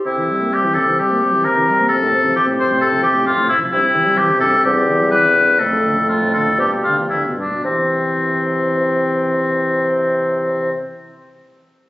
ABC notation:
X:1
M:4/4
L:1/16
Q:1/4=125
K:C
V:1 name="Oboe"
E4 G2 A2 G4 _B4 | A4 G2 c2 A2 G2 F2 E2 | E4 G2 A2 G4 B4 | A4 F2 A2 G2 F2 E2 D2 |
C16- | C16 |]
V:2 name="Clarinet"
C16- | C16 | C16 | A,8 B,6 z2 |
C16- | C16 |]
V:3 name="French horn" clef=bass
C, E, G, _B, G, E, C, E, G, B, G, E, C, E, G, B, | F,, A,, C, F, C, A,, F,, A,, C, F, C, A,, F,, A,, C, F, | G,, C, E, G, E, C, G,, C, G,, C, E, G, E, C, G,, C, | F,, A,, D, A,, F,, A,, D, A,, G,, B,, D, F, D, B,, G,, B,, |
E,16- | E,16 |]
V:4 name="Bassoon" clef=bass
C,16- | C,16 | C,8 E,,8 | F,,8 G,,6 z2 |
C,16- | C,16 |]